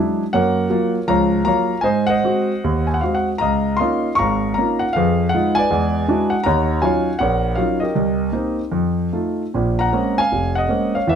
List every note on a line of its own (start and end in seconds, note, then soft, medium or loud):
0.00 0.22 F#3 soft
0.00 0.23 G#3 soft
0.00 0.22 D4 soft
0.00 0.23 E4 medium
0.33 0.66 F#2 medium
0.33 0.66 A#3 medium
0.33 1.05 A#4 medium
0.33 1.04 C#5 medium
0.33 0.91 F#5 medium
0.70 0.96 F#3 medium
0.70 0.96 A#3 medium
0.70 0.97 F4 medium
1.08 1.41 C#2 medium
1.08 1.40 F3 medium
1.08 1.46 C#5 medium
1.08 1.46 F5 medium
1.08 1.43 A#5 medium
1.45 1.72 F#3 soft
1.45 1.72 A#3 soft
1.45 1.72 F4 medium
1.45 1.83 C#5 medium
1.45 1.82 F5 medium
1.45 1.81 A#5 medium
1.81 2.18 G#2 medium
1.81 2.08 C5 medium
1.81 2.08 D#5 medium
1.81 2.06 G#5 medium
2.07 2.86 C5 medium
2.07 2.86 D#5 medium
2.07 2.84 F#5 medium
2.24 2.51 G#3 medium
2.24 2.51 C4 soft
2.24 2.51 F#4 medium
2.64 2.98 D#2 medium
2.87 2.95 G#5 medium
2.94 3.02 F#5 medium
3.01 3.30 G#3 soft
3.01 3.31 C4 soft
3.01 3.31 F#4 medium
3.01 3.15 F5 medium
3.15 3.28 F#5 medium
3.38 3.76 C#2 medium
3.38 3.79 D#5 medium
3.38 3.78 F5 medium
3.38 3.76 A#5 medium
3.77 4.07 C#4 soft
3.77 4.53 D#5 medium
3.77 4.17 F5 medium
3.77 4.18 C6 medium
3.81 4.07 A#3 medium
3.81 4.08 D#4 soft
3.81 4.07 F4 medium
4.15 4.91 F5 medium
4.15 4.53 A#5 medium
4.15 4.57 C#6 medium
4.20 4.53 G#1 medium
4.54 4.84 A#3 medium
4.54 4.82 A#5 medium
4.58 4.84 C#4 soft
4.58 4.85 D#4 soft
4.58 4.85 F4 medium
4.79 4.93 F#5 medium
4.93 5.29 F2 medium
4.93 5.67 G#4 medium
4.93 5.57 B4 medium
4.93 5.33 F5 medium
5.29 5.57 F#5 medium
5.34 5.60 G#3 medium
5.34 5.60 D#4 medium
5.34 5.60 F4 medium
5.55 6.29 B4 medium
5.55 6.29 D5 medium
5.55 6.34 G#5 loud
5.70 6.03 E2 medium
5.70 6.03 G#3 medium
6.08 6.34 G#3 medium
6.08 6.34 D4 medium
6.08 6.34 E4 soft
6.08 6.34 F#4 medium
6.30 6.45 F#5 medium
6.44 6.78 D#2 medium
6.44 6.78 D#3 medium
6.44 6.83 C#5 medium
6.44 7.17 F#5 medium
6.44 6.79 A#5 medium
6.82 7.09 F#3 medium
6.82 7.09 C#4 soft
6.82 7.09 D#4 medium
6.82 7.09 F4 medium
6.82 7.20 C#5 medium
6.82 7.54 F5 medium
6.82 7.17 G#5 medium
7.19 7.53 A#1 medium
7.19 7.82 A#4 medium
7.19 7.92 C#5 medium
7.19 7.59 F#5 medium
7.55 7.84 F#3 medium
7.55 7.84 C#4 soft
7.55 7.84 D#4 soft
7.55 7.85 F4 medium
7.55 7.80 F5 medium
7.80 8.55 G4 soft
7.80 8.55 A#4 soft
7.80 8.53 D#5 medium
7.95 8.28 C2 medium
8.32 8.60 A#3 medium
8.32 8.60 C4 soft
8.32 8.60 D#4 medium
8.72 9.07 F2 medium
9.13 9.42 A3 soft
9.13 9.42 D#4 soft
9.13 9.42 F4 soft
9.54 9.88 A#1 medium
9.54 9.88 A#2 medium
9.79 10.17 F#5 medium
9.79 10.16 A#5 medium
9.92 10.20 G#3 soft
9.92 10.20 A#3 soft
9.92 10.20 C4 soft
9.92 10.20 C#4 medium
10.18 10.55 F5 medium
10.18 10.54 G#5 loud
10.32 10.65 F1 medium
10.55 10.93 D#5 medium
10.55 10.96 F#5 medium
10.69 10.96 G#3 soft
10.69 10.96 A#3 soft
10.69 10.96 C4 soft
10.69 10.96 C#4 medium
10.95 11.08 C#5 medium
10.95 11.07 F5 medium
11.07 11.15 E2 medium
11.07 11.15 E3 medium
11.07 11.15 B4 medium
11.07 11.15 E5 medium